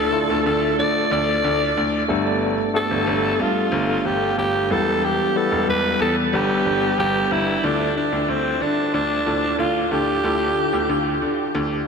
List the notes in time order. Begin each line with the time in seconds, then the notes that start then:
Already playing: D3 A3 D4 E4 F4 A4
0.13 A3 D4 E4 F4 A4
0.30 D2
0.46 D2 A4
0.79 D3 D5
1.11 D2 D5
1.44 D2
1.77 D2
2.08 G1 G2 A3 B3 D4 G4 A4
2.74 A3 B3 D4 G4 A4
2.91 G1
3.07 G1
3.40 G2 F4
3.72 G1
4.05 G1 G4
4.37 G1 G4
4.70 E1 E3 G3 B3 E4 G4 A4 B4
5.05 G4
5.36 G3 B3 E4 G4 A4 B4
5.52 E1
5.68 E1 B4
6.00 E2 A4
6.33 G1 G2 G3 B3 D4 G4 B4
6.66 G1
6.98 G1 G4
7.31 G1 E4
7.64 D2 D3 D4 E4 F4 A4
7.97 D4
8.12 D2
8.28 D2 C4
8.61 D3 D4
8.94 D2 D4
9.26 D2 D4 E4 F4 A4
9.58 D2 F4
9.91 D2 D4 E4 F4 G4 A4
10.24 D2 D3 D4 E4 F4 A4
10.73 D2
10.89 D2
11.22 D3
11.55 D2